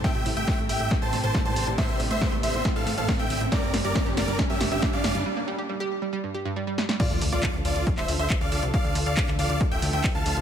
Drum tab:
CC |----------------|----------------|----------------|----------------|
HH |xxoxxxoxxxoxxxox|xxoxxxoxxxoxoxox|xxoxxxoxxxoxxxox|----------------|
CP |----------------|----------------|----------------|----------------|
SD |o---o---o---o---|o---o---o---o---|o-o-o-o-o-o-o-o-|--------------oo|
BD |o---o---o---o---|o---o---o---o---|o---o---o---o---|----------------|

CC |x---------------|----------------|
HH |xxoxxxoxxxoxxxox|xxoxxxoxxxoxoxox|
CP |----x----x--x---|----xx------x---|
SD |----------------|----------------|
BD |o---o---o---o---|o---o---o---o---|